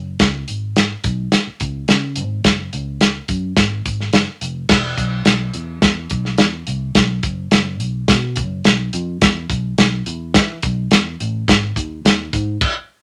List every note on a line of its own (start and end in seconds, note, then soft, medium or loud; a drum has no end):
0.00 0.15 F#1 medium
0.19 0.43 C#2 loud
0.19 kick loud
0.19 snare loud
0.19 closed hi-hat medium
0.48 0.94 G#1 medium
0.48 closed hi-hat medium
0.76 snare loud
0.76 closed hi-hat medium
1.04 1.27 B1 medium
1.04 kick medium
1.04 closed hi-hat medium
1.32 snare medium
1.32 closed hi-hat medium
1.47 muted fingered electric bass stroke soft
1.60 1.83 C#2 medium
1.60 kick medium
1.60 closed hi-hat medium
1.88 2.18 C#3 medium
1.88 snare loud
1.88 closed hi-hat medium
2.16 2.40 G#1 medium
2.16 closed hi-hat medium
2.44 2.68 F#1 medium
2.44 kick loud
2.44 snare loud
2.44 closed hi-hat medium
2.73 3.19 C#2 medium
2.73 closed hi-hat medium
3.01 snare loud
3.01 closed hi-hat medium
3.28 3.52 F#2 medium
3.28 kick medium
3.28 closed hi-hat medium
3.57 3.80 G#1 loud
3.57 kick medium
3.57 snare loud
3.57 closed hi-hat medium
3.86 4.09 G#1 medium
3.86 kick medium
3.86 closed hi-hat medium
4.00 snare soft
4.13 4.25 F#1 medium
4.13 snare loud
4.13 closed hi-hat medium
4.41 4.65 F1 medium
4.41 closed hi-hat medium
4.69 4.93 E1 loud
4.69 kick loud
4.69 snare loud
4.69 crash medium
4.98 5.21 B1 medium
4.98 kick medium
4.98 closed hi-hat medium
5.25 5.49 B1 medium
5.25 snare loud
5.25 closed hi-hat medium
5.54 5.78 E2 medium
5.54 closed hi-hat medium
5.82 6.06 E2 loud
5.82 kick medium
5.82 snare loud
5.82 closed hi-hat medium
6.10 6.34 B1 medium
6.10 kick medium
6.10 closed hi-hat medium
6.25 snare soft
6.38 6.62 E2 medium
6.38 snare loud
6.38 closed hi-hat medium
6.67 6.91 C2 medium
6.67 closed hi-hat medium
6.95 7.19 B1 loud
6.95 kick loud
6.95 snare loud
6.95 closed hi-hat medium
7.23 7.46 F#1 medium
7.23 kick medium
7.23 closed hi-hat medium
7.51 7.81 F#1 medium
7.51 snare loud
7.51 closed hi-hat medium
7.80 8.03 B1 medium
7.80 closed hi-hat medium
8.08 8.39 B2 loud
8.08 kick loud
8.08 snare loud
8.08 closed hi-hat medium
8.36 8.60 F#1 medium
8.36 kick medium
8.36 closed hi-hat medium
8.64 8.88 B1 medium
8.64 snare loud
8.64 closed hi-hat medium
8.93 9.17 F2 medium
8.93 closed hi-hat medium
9.21 9.45 E2 loud
9.21 kick loud
9.21 snare loud
9.21 closed hi-hat medium
9.50 9.73 B1 medium
9.50 kick medium
9.50 closed hi-hat medium
9.78 10.01 B1 medium
9.78 snare loud
9.78 closed hi-hat medium
10.06 10.36 E2 medium
10.06 closed hi-hat medium
10.34 10.58 E3 loud
10.34 kick medium
10.34 snare loud
10.34 closed hi-hat loud
10.62 10.86 B1 medium
10.62 kick medium
10.62 closed hi-hat medium
10.91 11.15 E2 medium
10.91 snare loud
10.91 closed hi-hat medium
11.20 11.43 A1 medium
11.20 closed hi-hat medium
11.48 11.71 G#1 loud
11.48 kick loud
11.48 snare loud
11.48 closed hi-hat loud
11.76 11.99 D#2 medium
11.76 kick medium
11.76 closed hi-hat medium
12.05 12.28 D#2 loud
12.05 snare loud
12.05 closed hi-hat loud
12.33 12.56 G#2 medium
12.33 kick medium
12.33 closed hi-hat medium
12.61 kick loud
12.61 crash medium